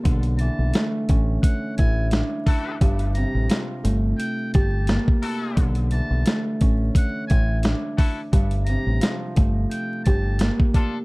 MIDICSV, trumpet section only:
0, 0, Header, 1, 2, 480
1, 0, Start_track
1, 0, Tempo, 689655
1, 38, Time_signature, 4, 2, 24, 8
1, 7689, End_track
2, 0, Start_track
2, 0, Title_t, "Trumpet section"
2, 0, Program_c, 0, 61
2, 1717, Note_on_c, 0, 64, 103
2, 1717, Note_on_c, 0, 66, 111
2, 1717, Note_on_c, 0, 69, 121
2, 1921, Note_off_c, 0, 64, 0
2, 1921, Note_off_c, 0, 69, 0
2, 1922, Note_off_c, 0, 66, 0
2, 3636, Note_on_c, 0, 64, 112
2, 3637, Note_on_c, 0, 66, 101
2, 3637, Note_on_c, 0, 69, 119
2, 3953, Note_off_c, 0, 64, 0
2, 3953, Note_off_c, 0, 66, 0
2, 3953, Note_off_c, 0, 69, 0
2, 5553, Note_on_c, 0, 64, 98
2, 5553, Note_on_c, 0, 66, 102
2, 5553, Note_on_c, 0, 69, 103
2, 5708, Note_off_c, 0, 64, 0
2, 5708, Note_off_c, 0, 66, 0
2, 5708, Note_off_c, 0, 69, 0
2, 7478, Note_on_c, 0, 62, 102
2, 7478, Note_on_c, 0, 65, 101
2, 7478, Note_on_c, 0, 69, 117
2, 7631, Note_off_c, 0, 62, 0
2, 7631, Note_off_c, 0, 65, 0
2, 7631, Note_off_c, 0, 69, 0
2, 7689, End_track
0, 0, End_of_file